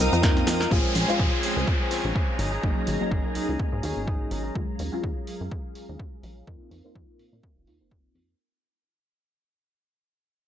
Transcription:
Already playing: analog polysynth A#3 C4 D#4 F4, string machine A#4 F5 D#6
0.00 analog synth bass C2, clean electric guitar C4 D#4 A#4, shaker
0.13 analog synth bass F2, cross-stick, closed hi-hat, maracas, shaker
0.22 clean electric guitar C4 D#4 A#4, kick, snare, closed hi-hat, maracas, shaker
0.37 snare, closed hi-hat, shaker
0.47 analog synth bass F2, snare, open hi-hat, shaker, maracas
0.60 clean electric guitar D#4 A#4, snare, shaker, maracas
0.71 analog synth bass A#1, clean electric guitar F3 C4 C#4 G#4, analog polysynth G#3 F4 C5, string machine G#5 A#5 C6, kick, downlifter, maracas
0.95 analog synth bass A#1, open hi-hat, maracas
1.08 analog polysynth G#3 F4 C5, maracas
1.19 analog synth bass A#1, clean electric guitar F3 C4 C#4 G#4, kick, maracas
1.32 clean electric guitar C4 C#4 G#4
1.43 clean electric guitar F3 C4 C#4 G#4, open hi-hat, maracas
1.56 analog synth bass C#2, clean electric guitar C4 C#4 G#4, maracas
1.67 kick, maracas
1.80 clean electric guitar C4 C#4 G#4
1.91 clean electric guitar F3 C4 C#4 G#4, open hi-hat, maracas
2.05 analog synth bass A#1, maracas
2.15 clean electric guitar F3 C4 C#4 G#4, kick, maracas
2.39 analog synth bass G#1, clean electric guitar F#3 C#4 D#4 G#4, string machine G#4, open hi-hat, maracas
2.52 clean electric guitar C#4 D#4 G#4, maracas
2.63 analog synth bass G#1, clean electric guitar F#3 D#4 G#4, analog polysynth F#3 A#3 C#4 D#4, kick
2.87 analog synth bass G#1, open hi-hat, maracas
3.00 analog polysynth F#3 A#3 C#4 D#4, maracas
3.11 analog synth bass G#1, clean electric guitar F#3 C#4 D#4 G#4, kick, maracas
3.24 clean electric guitar C#4 D#4 G#4
3.34 analog synth bass C#2, clean electric guitar F#3 C#4 D#4 G#4, open hi-hat, maracas
3.49 analog synth bass C#2, maracas
3.59 kick
3.72 analog synth bass G#2, clean electric guitar C#4 D#4 G#4
3.82 analog synth bass D#2, clean electric guitar F#3 C#4 D#4 G#4, open hi-hat, maracas
3.97 analog synth bass G#1, maracas
4.07 clean electric guitar F#3 C#4 D#4 G#4, kick
4.30 analog synth bass G#1, clean electric guitar F#3 C#4 D#4 G#4, open hi-hat, maracas
4.44 clean electric guitar C#4 D#4 G#4, maracas
4.55 analog synth bass D#2, analog polysynth F#3 G#3 C#4 F4, string machine G#4 F5, kick
4.79 analog synth bass D#2, open hi-hat, maracas
4.92 analog polysynth F#3 G#3 C#4 F4, maracas
5.04 analog synth bass D#2, kick
5.27 open hi-hat, maracas
5.41 analog synth bass F#2, maracas
5.51 kick
5.75 open hi-hat, maracas
5.89 analog synth bass D#2, maracas
5.99 kick
6.23 analog synth bass A#1, open hi-hat, maracas
6.47 analog synth bass F2, analog polysynth A#3 C4 D#4 F4, string machine A#4 F5 D#6, kick
6.71 analog synth bass F2, open hi-hat
6.84 analog polysynth A#3 C4 D#4 F4
6.95 analog synth bass F2, kick
7.19 analog synth bass A#2, open hi-hat
7.33 analog synth bass A#2
7.43 kick
7.57 analog synth bass F1
7.67 analog synth bass D#2, analog polysynth A#3 C4 D#4 F4, open hi-hat
7.80 analog synth bass F1, analog polysynth A#3 C4 D#4 F4
7.91 kick
8.15 analog synth bass F2, open hi-hat

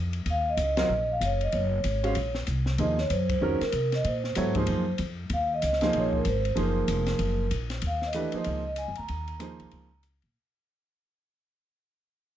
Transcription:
Already playing: upright bass F2
0.13 ride
0.26 upright bass D#2, ride
0.30 vibraphone F5
0.49 vibraphone D#5
0.57 upright bass C#2, hi-hat pedal, ride
0.62 vibraphone D#5
0.77 upright piano F#3 C4 F4 A#4 D#5, snare, ride
0.82 vibraphone D#5
0.89 upright bass A#1
1.12 vibraphone F5
1.21 upright bass F#1, hi-hat pedal, ride
1.25 vibraphone C#5
1.41 vibraphone D#5, ride
1.52 upright bass F#1, vibraphone C#5, ride
1.84 upright bass G#1, vibraphone C#5, hi-hat pedal, ride
2.03 upright piano G#3 C#4 F#4 C5 F5, ride
2.15 upright bass A#1, ride
2.35 snare
2.47 upright bass C2, hi-hat pedal, ride
2.66 snare
2.78 upright bass D#2, upright piano F3 A#3 D#4 G#4 C5, vibraphone D#5, ride
2.98 vibraphone C#5, snare
3.10 upright bass F#2, vibraphone C5, hi-hat pedal, ride
3.29 vibraphone C5, kick, ride
3.41 upright bass F2, upright piano D#3 G#3 C#4 F#4 A#4
3.61 vibraphone A#4, muted upright bass stroke, snare, ride
3.72 upright bass C3, hi-hat pedal, ride
3.92 vibraphone D#5, snare, ride
4.04 upright bass A#2, vibraphone C5, ride
4.24 snare
4.35 upright bass G#2, upright piano F#3 B3 E4 A4 C#5, hi-hat pedal, ride
4.55 upright piano F3 A#3 D#4 G#4 C5, kick, ride
4.67 upright bass F#2, ride
4.98 upright bass F2, hi-hat pedal, ride
5.30 upright bass D#2, vibraphone F5, ride
5.54 vibraphone D#5
5.62 upright bass C#2, hi-hat pedal, ride
5.66 vibraphone D#5
5.73 snare
5.81 upright piano F3 A#3 D#4 G#4 C5, vibraphone D#5, snare, ride
5.93 upright bass A#1, ride
5.98 vibraphone C#5
6.13 kick
6.17 vibraphone A#4
6.25 upright bass G#1, vibraphone C5, hi-hat pedal, ride
6.45 ride
6.55 upright bass F#1, upright piano F3 A#3 D#4 G#4 C5, ride
6.61 vibraphone A#4
6.88 upright bass F1, hi-hat pedal, ride
7.06 snare, ride
7.19 upright bass F#1, ride
7.51 upright bass A#1, hi-hat pedal, ride
7.70 snare, ride
7.82 upright bass D#2, ride
7.87 vibraphone F5
8.02 snare
8.06 vibraphone D#5
8.13 upright piano E3 A3 D4 G4 B4, hi-hat pedal, ride
8.32 upright piano F3 A#3 D#4 G#4 C5, muted upright bass stroke, ride
8.36 vibraphone D#5
8.44 upright bass C#2, ride
8.67 vibraphone D#5
8.76 vibraphone G#5, hi-hat pedal, ride
8.88 upright bass F#2
8.95 upright bass D2, vibraphone A#5, ride
9.08 upright bass D#2, ride
9.28 ride
9.39 upright piano F3 A#3 D#4 G#4 C5, hi-hat pedal, ride
9.60 upright bass C#2, ride
9.71 upright bass C#2, ride
10.03 hi-hat pedal, ride
10.22 upright bass A#2, ride

